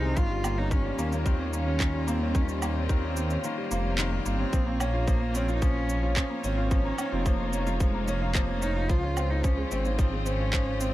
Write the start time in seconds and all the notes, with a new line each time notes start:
Already playing: C2 D#3 F3 G#3 C4 D#4 G#4
0.04 C4
0.16 G1 D#3 G3 C#4 F4, kick, shaker
0.31 G3
0.44 A#3, low woodblock, shaker
0.58 C#4 D#4
0.71 D#3 C#4, kick, shaker
0.85 G3
0.98 D#2 A#3, shaker
1.12 A#3 C#4, shaker
1.25 D#3 C4, kick, shaker
1.39 C#4
1.53 A#3 C#4, shaker
1.67 C#4
1.80 D#3, kick, clap, shaker
1.94 G3
2.07 A#3 C4, shaker
2.21 C#4
2.35 D#3 C#4 C5, kick, shaker
2.49 G3, shaker
2.62 A#3, low woodblock, shaker
2.76 C4 C#4
2.89 D#3, kick, shaker
3.03 C#4
3.17 A#3, shaker
3.30 C#4, shaker
3.44 D#3 A#3, shaker
3.58 G3
3.71 F1 A#3, shaker
3.85 C#4
3.98 D#3, clap, shaker
4.12 G3
4.26 G1 A#3 C4, shaker
4.39 C#4
4.53 A#1 F3 A#3 C#5, kick, shaker
4.66 A#3
4.80 A#3 C#4, low woodblock, shaker
4.94 F4
5.07 F3, kick, shaker
5.21 A#3
5.35 C4 C#4, shaker
5.48 F4, shaker
5.55 D#4
5.62 F3 C#4, kick, shaker
5.76 F4
5.89 C#4, shaker
6.03 F4
6.16 F3 C#4, kick, clap, shaker
6.30 A#3
6.44 G#1 C4 C#4, shaker
6.57 F4
6.71 F3 C#4 D#4, kick, shaker
6.85 A#3
6.98 C#4, low woodblock, shaker
7.12 F1 C4 F4
7.26 F3 A#3, kick, shaker
7.40 F4
7.53 C#4, shaker
7.66 G3 F4, shaker
7.80 F3 G#3, kick, shaker
7.94 A#3
8.08 A#3 C#4, shaker
8.22 F4
8.35 F3, kick, clap, shaker
8.49 A#3
8.62 C#4 D#4, shaker
8.76 F4
8.89 C#2 C#3 F3 F4 C5, kick, shaker
9.03 C#4
9.17 C4, low woodblock, shaker
9.30 C#4 D#4
9.44 F3 C#4, kick, shaker
9.58 G#3
9.71 G#1 C4, shaker
9.85 A#3 C#4, shaker
9.99 F3 C4, kick, shaker
10.12 G#3
10.26 C4 C#4, shaker
10.39 C#4
10.53 F3, kick, clap, shaker
10.67 C#4
10.80 C4, shaker